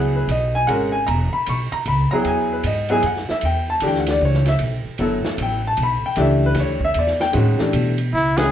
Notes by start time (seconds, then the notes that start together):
Already playing: C#2 F#3 B3 E4 G#4 F#5
0.16 B4
0.28 B1 D#5, hi-hat pedal, ride
0.55 G#5
0.67 G#1 G#3 C#4 F#4 A#4 F#5, ride
0.92 G#5
1.07 E1 A#5, ride
1.33 B5, muted upright bass stroke
1.46 B1 C#6, hi-hat pedal, ride
1.72 A#5, muted upright bass stroke, ride
1.86 C#2 B5, ride
2.11 F#3 B3 E4 G#4 A#5
2.22 E2 G5, ride
2.27 G#5
2.53 B4
2.63 G#2 D#5, hi-hat pedal, ride
2.89 F#3 B3 E4 G#4 G#5, ride
3.03 F#2 F#5, ride
3.16 snare
3.29 E5, muted upright bass stroke, snare
3.41 E2, ride
3.45 G5
3.70 A5
3.80 D2 E3 A3 D4 G4, hi-hat pedal, ride
3.88 G5
3.95 snare
4.00 F#5
4.06 snare, ride
4.11 D5
4.21 C#2
4.25 C#5
4.34 snare
4.46 E5, snare, ride
4.59 B1, ride
4.86 muted upright bass stroke
4.98 G1 F#3 B3 E4 A4, ride
5.25 muted upright bass stroke, snare
5.38 A1, hi-hat pedal, ride
5.42 G5
5.67 A5
5.77 B1, ride
5.83 B5
6.03 G5, muted upright bass stroke
6.16 C#2 E3 A3 D4 G4, hi-hat pedal, ride
6.21 E5
6.46 B4
6.54 D2, snare, ride
6.60 C#5
6.81 kick
6.85 E5
6.94 E2, ride
6.99 D5
7.07 snare
7.20 G5, snare
7.33 A2 D#3 G#3 C#4 F#4, ride
7.59 E3 A3 D4 G4, muted upright bass stroke, snare
7.73 B2, hi-hat pedal, ride
7.98 ride
8.12 C#2 E4, open hi-hat
8.37 D#3 G#3 C#4 F#4 G#4 B4, snare, ride